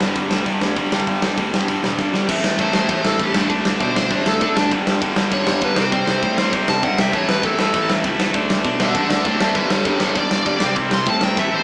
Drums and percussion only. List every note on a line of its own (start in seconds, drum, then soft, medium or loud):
0.01 snare loud
0.16 kick loud
0.16 open hi-hat medium
0.31 snare loud
0.38 kick medium
0.46 kick medium
0.46 open hi-hat medium
0.61 snare loud
0.76 kick loud
0.76 open hi-hat medium
0.92 snare loud
1.00 kick medium
1.07 kick medium
1.07 open hi-hat medium
1.22 snare loud
1.38 kick loud
1.38 open hi-hat medium
1.54 snare loud
1.61 kick medium
1.68 kick loud
1.68 open hi-hat medium
1.84 snare loud
1.99 kick loud
1.99 snare medium
2.14 snare loud
2.29 kick loud
2.29 crash loud
2.29 crash medium
2.44 snare loud
2.58 kick loud
2.58 crash medium
2.73 snare loud
2.88 kick loud
2.88 crash medium
3.05 snare loud
3.19 kick loud
3.19 crash medium
3.34 snare loud
3.50 kick loud
3.50 crash medium
3.65 snare loud
3.80 kick loud
3.80 crash medium
3.96 snare loud
4.10 kick loud
4.10 crash medium
4.26 snare loud
4.41 kick loud
4.41 crash medium
4.57 snare loud
4.71 kick loud
4.71 crash medium
4.87 snare loud
5.02 kick loud
5.02 crash medium
5.16 snare loud
5.31 kick loud
5.31 crash medium
5.47 snare loud
5.61 kick loud
5.61 crash medium
5.76 snare loud
5.92 kick loud
5.92 crash medium
6.07 snare loud
6.23 kick loud
6.23 crash medium
6.38 snare loud
6.53 kick loud
6.53 crash medium
6.68 snare loud
6.83 kick loud
6.83 crash medium
6.98 snare loud
7.13 kick loud
7.13 crash medium
7.29 snare loud
7.43 kick loud
7.43 crash medium
7.59 snare loud
7.74 kick loud
7.74 crash medium
7.90 snare loud
8.04 kick loud
8.04 crash medium
8.20 snare loud
8.34 kick loud
8.34 crash medium
8.50 snare loud
8.64 kick loud
8.64 crash medium
8.80 snare loud
8.95 kick loud
8.95 crash medium
9.10 snare loud
9.25 kick loud
9.25 crash medium
9.40 snare loud
9.55 kick loud
9.55 crash medium
9.70 snare loud
9.85 kick loud
9.85 crash medium
10.00 snare loud
10.15 kick loud
10.15 crash medium
10.31 snare loud
10.46 kick loud
10.46 crash medium
10.60 snare loud
10.76 kick loud
10.76 crash medium
10.91 snare loud
11.06 kick loud
11.06 crash medium
11.21 snare loud
11.36 kick loud
11.36 snare medium